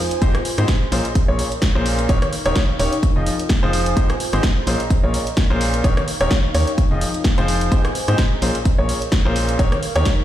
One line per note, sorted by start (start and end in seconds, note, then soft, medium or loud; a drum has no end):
0.00 0.50 F4 medium
0.00 0.50 C5 medium
0.00 0.50 G#5 medium
0.11 closed hi-hat medium
0.22 0.31 G#1 medium
0.22 0.34 G#2 medium
0.22 0.34 C4 medium
0.22 0.34 D#4 medium
0.22 0.34 G4 medium
0.22 0.34 G#4 medium
0.22 1.39 G#4 medium
0.22 0.34 C5 loud
0.22 kick loud
0.22 closed hi-hat medium
0.35 cross-stick medium
0.35 closed hi-hat soft
0.45 0.92 C6 medium
0.45 open hi-hat loud
0.54 0.68 G#2 medium
0.54 0.66 G#2 loud
0.54 0.68 C4 medium
0.54 0.68 D#4 medium
0.54 0.68 G4 medium
0.54 0.68 G#4 medium
0.54 0.68 C5 loud
0.54 1.39 D#5 medium
0.54 1.39 A#5 medium
0.54 cross-stick medium
0.54 closed hi-hat medium
0.68 kick loud
0.68 snare loud
0.68 closed hi-hat medium
0.92 1.02 A#1 loud
0.92 1.04 A#2 medium
0.92 1.04 C#4 medium
0.92 1.04 F4 medium
0.92 1.04 G#4 medium
0.92 1.04 A#4 medium
0.92 3.42 A#4 medium
0.92 1.04 C5 medium
0.92 open hi-hat loud
1.05 closed hi-hat medium
1.15 kick loud
1.15 closed hi-hat medium
1.28 1.43 A#1 loud
1.28 1.45 A#2 medium
1.28 1.45 C#4 medium
1.28 1.45 F4 medium
1.28 1.45 G#4 medium
1.28 1.45 A#4 medium
1.28 1.45 C#5 medium
1.39 3.42 F5 medium
1.39 open hi-hat loud
1.52 closed hi-hat medium
1.62 kick loud
1.62 snare loud
1.62 closed hi-hat medium
1.75 2.07 A#1 loud
1.75 2.07 A#2 loud
1.75 2.07 C#4 medium
1.75 2.07 F4 medium
1.75 2.07 G#4 medium
1.75 2.07 A#4 medium
1.75 2.07 C5 loud
1.86 open hi-hat loud
1.99 closed hi-hat medium
2.09 2.19 D#1 loud
2.09 2.21 D#3 medium
2.09 2.21 C#4 medium
2.09 2.21 D#4 medium
2.09 3.42 D#4 medium
2.09 2.21 G4 medium
2.09 2.21 A#4 medium
2.09 2.21 C#5 loud
2.09 kick loud
2.09 closed hi-hat medium
2.22 cross-stick medium
2.22 closed hi-hat soft
2.33 open hi-hat loud
2.46 2.53 D#1 loud
2.46 2.55 D#3 medium
2.46 2.55 C#4 medium
2.46 2.55 D#4 medium
2.46 2.55 G4 medium
2.46 2.55 A#4 medium
2.46 2.55 C#5 loud
2.46 cross-stick medium
2.46 closed hi-hat medium
2.52 3.03 G5 medium
2.52 snare loud
2.56 kick loud
2.56 closed hi-hat medium
2.79 2.89 D#1 loud
2.79 2.92 C#4 medium
2.79 2.92 D#4 medium
2.79 2.92 G4 medium
2.79 2.92 A#4 medium
2.79 2.92 C#5 medium
2.79 open hi-hat loud
2.93 closed hi-hat medium
3.03 4.25 F4 medium
3.03 kick loud
3.03 closed hi-hat medium
3.16 3.30 F1 loud
3.16 3.33 F3 medium
3.16 3.33 C4 medium
3.16 3.33 D#4 medium
3.16 3.33 F4 medium
3.16 3.33 G#4 medium
3.16 3.33 D#5 medium
3.26 open hi-hat loud
3.39 closed hi-hat medium
3.46 4.25 C5 medium
3.46 4.25 G#5 medium
3.46 snare loud
3.50 kick loud
3.50 closed hi-hat medium
3.63 3.95 F1 loud
3.63 3.94 F3 loud
3.63 3.94 C4 medium
3.63 3.94 D#4 medium
3.63 3.94 F4 medium
3.63 3.94 G#4 medium
3.63 3.94 C5 loud
3.73 open hi-hat loud
3.86 closed hi-hat medium
3.97 4.06 G#1 loud
3.97 4.09 G#2 medium
3.97 4.09 C4 medium
3.97 4.09 D#4 medium
3.97 4.09 G4 medium
3.97 4.09 G#4 medium
3.97 5.14 G#4 medium
3.97 4.09 C5 loud
3.97 kick loud
3.97 closed hi-hat medium
4.10 cross-stick medium
4.10 closed hi-hat soft
4.20 open hi-hat loud
4.29 4.41 G#1 loud
4.29 4.43 G#2 loud
4.29 4.43 C4 medium
4.29 4.43 D#4 medium
4.29 4.43 G4 medium
4.29 4.43 G#4 medium
4.29 4.43 C5 loud
4.29 5.14 D#5 medium
4.29 5.14 A#5 medium
4.29 cross-stick medium
4.29 closed hi-hat medium
4.43 kick loud
4.43 snare loud
4.43 closed hi-hat medium
4.67 4.77 A#1 loud
4.67 4.79 A#2 medium
4.67 4.79 C#4 medium
4.67 4.79 F4 medium
4.67 4.79 G#4 medium
4.67 4.79 A#4 medium
4.67 7.17 A#4 medium
4.67 4.79 C5 medium
4.67 open hi-hat loud
4.80 closed hi-hat soft
4.90 kick loud
4.90 closed hi-hat medium
5.03 5.18 A#1 loud
5.03 5.21 A#2 medium
5.03 5.21 C#4 medium
5.03 5.21 F4 medium
5.03 5.21 G#4 medium
5.03 5.21 A#4 medium
5.03 5.21 C#5 medium
5.11 7.17 F5 medium
5.11 open hi-hat loud
5.27 closed hi-hat soft
5.37 kick loud
5.37 snare loud
5.37 closed hi-hat medium
5.50 5.82 A#1 loud
5.50 5.82 A#2 loud
5.50 5.82 C#4 medium
5.50 5.82 F4 medium
5.50 5.82 G#4 medium
5.50 5.82 A#4 medium
5.50 5.82 C5 loud
5.61 open hi-hat loud
5.74 closed hi-hat medium
5.84 5.94 D#1 loud
5.84 5.96 D#3 medium
5.84 5.96 C#4 medium
5.84 7.16 D#4 medium
5.84 5.96 D#4 medium
5.84 5.96 G4 medium
5.84 5.96 A#4 medium
5.84 5.96 C#5 loud
5.84 kick loud
5.84 closed hi-hat medium
5.97 cross-stick medium
5.97 closed hi-hat soft
6.08 open hi-hat loud
6.21 6.28 D#1 medium
6.21 6.31 D#3 medium
6.21 6.31 C#4 medium
6.21 6.31 D#4 medium
6.21 6.30 G4 medium
6.21 6.31 A#4 medium
6.21 6.31 C#5 loud
6.21 cross-stick medium
6.21 closed hi-hat medium
6.27 6.78 G5 medium
6.27 snare loud
6.31 kick loud
6.31 closed hi-hat medium
6.55 6.64 D#2 loud
6.55 6.67 C#4 medium
6.55 6.67 D#4 medium
6.55 6.67 G4 medium
6.55 6.67 A#4 medium
6.55 6.67 C#5 medium
6.55 open hi-hat loud
6.67 closed hi-hat soft
6.78 8.00 F4 medium
6.78 kick loud
6.78 closed hi-hat medium
6.91 7.05 F1 loud
6.91 7.08 F3 medium
6.91 7.08 C4 medium
6.91 7.08 D#4 medium
6.91 7.08 F4 medium
6.91 7.08 G#4 medium
6.91 7.08 D#5 medium
7.01 open hi-hat loud
7.14 closed hi-hat soft
7.21 8.00 C5 medium
7.21 8.00 G#5 medium
7.21 snare loud
7.25 kick loud
7.25 closed hi-hat medium
7.38 7.70 F1 loud
7.38 7.69 F3 loud
7.38 7.69 C4 medium
7.38 7.69 D#4 medium
7.38 7.69 F4 medium
7.38 7.69 G#4 medium
7.38 7.69 C5 loud
7.38 closed hi-hat soft
7.48 open hi-hat loud
7.61 closed hi-hat soft
7.72 7.81 G#1 medium
7.72 7.84 G#2 medium
7.72 7.84 C4 medium
7.72 7.84 D#4 medium
7.72 7.84 G4 medium
7.72 7.84 G#4 medium
7.72 8.89 G#4 medium
7.72 7.84 C5 loud
7.72 kick loud
7.72 closed hi-hat medium
7.82 8.89 D#5 medium
7.82 cross-stick medium
7.82 closed hi-hat soft
7.95 open hi-hat loud
8.04 8.18 G#2 medium
8.04 8.16 G#2 loud
8.04 8.18 C4 medium
8.04 8.18 D#4 medium
8.04 8.18 G4 medium
8.04 8.18 G#4 medium
8.04 8.18 C5 loud
8.04 8.89 A#5 medium
8.04 cross-stick medium
8.04 closed hi-hat medium
8.18 kick loud
8.18 snare loud
8.18 closed hi-hat medium
8.42 8.52 A#1 loud
8.42 8.54 A#2 medium
8.42 8.54 C#4 medium
8.42 8.54 F4 medium
8.42 8.54 G#4 medium
8.42 10.24 A#4 medium
8.42 8.54 A#4 medium
8.42 8.54 C5 medium
8.42 open hi-hat loud
8.55 closed hi-hat medium
8.65 10.24 F5 medium
8.65 kick loud
8.65 closed hi-hat medium
8.78 8.93 A#1 loud
8.78 8.96 A#2 medium
8.78 8.96 C#4 medium
8.78 8.96 F4 medium
8.78 8.96 G#4 medium
8.78 8.96 A#4 medium
8.78 8.96 C#5 medium
8.89 open hi-hat loud
9.02 closed hi-hat soft
9.12 kick loud
9.12 snare loud
9.12 closed hi-hat medium
9.25 9.57 A#1 loud
9.25 9.57 A#2 loud
9.25 9.57 C#4 medium
9.25 9.57 F4 medium
9.25 9.57 G#4 medium
9.25 9.57 A#4 medium
9.25 9.57 C5 loud
9.36 open hi-hat loud
9.49 closed hi-hat medium
9.59 9.69 D#1 medium
9.59 9.71 D#3 medium
9.59 9.71 C#4 medium
9.59 10.24 D#4 medium
9.59 9.71 D#4 medium
9.59 9.71 G4 medium
9.59 9.71 A#4 medium
9.59 9.71 C#5 loud
9.59 kick loud
9.59 closed hi-hat medium
9.72 cross-stick medium
9.72 closed hi-hat soft
9.83 open hi-hat loud
9.96 10.03 D#2 loud
9.96 10.05 D#3 loud
9.96 10.05 C#4 medium
9.96 10.05 D#4 medium
9.96 10.05 G4 medium
9.96 10.05 A#4 medium
9.96 10.05 C#5 loud
9.96 cross-stick medium
9.96 closed hi-hat medium
10.02 10.24 G5 medium
10.02 snare loud
10.06 kick loud
10.06 closed hi-hat medium